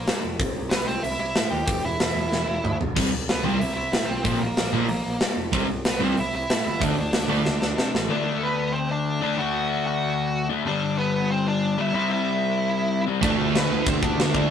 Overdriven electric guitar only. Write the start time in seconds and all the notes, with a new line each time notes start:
2.96 C3 G3 C4
3.44 C3 G3 C4
4.25 A#2 F3 A#3
4.73 A#2 F3 A#3
5.53 C3 G3 C4
6.00 C3 G3 C4
6.80 D3 A3 D4
7.29 D3 A3 D4
8.09 D3 A3 D4
9.21 D3 A3 D4
9.37 D3 A3 D4
10.49 D3 A3 D4
10.64 G2 D3 G3
11.78 G2 D3 G3
11.94 C3 G3 C4
13.06 C3 G3 C4
13.22 D3 A3 D4
14.34 D3 A3 D4